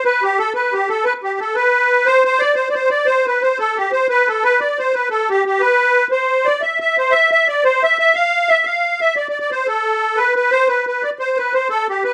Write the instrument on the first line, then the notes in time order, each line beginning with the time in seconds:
accordion
0.05 B4
0.23 G4
0.38 A4
0.54 B4
0.73 G4
0.89 A4
1.05 B4
1.23 G4
1.39 A4
1.55 B4
2.06 C5
2.25 C5
2.39 D5
2.55 C5
2.69 D5
2.74 C5
2.90 D5
3.06 C5
3.26 B4
3.42 C5
3.59 A4
3.77 G4
3.92 C5
4.09 B4
4.28 A4
4.44 B4
4.60 D5
4.79 C5
4.94 B4
5.10 A4
5.29 G4
5.46 G4
5.60 B4
6.11 C5
6.45 D5
6.61 E5
6.80 E5
6.98 C5
7.12 E5
7.31 E5
7.48 D5
7.64 C5
7.83 E5
7.99 E5
8.15 F5
8.49 E5
8.65 F5
9.01 E5
9.16 D5
9.29 D5
9.40 D5
9.51 C5
9.67 A4
10.17 B4
10.36 B4
10.52 C5
10.68 B4
10.87 B4
11.03 D5
11.19 C5
11.37 B4
11.53 C5
11.70 A4
11.89 G4
12.04 B4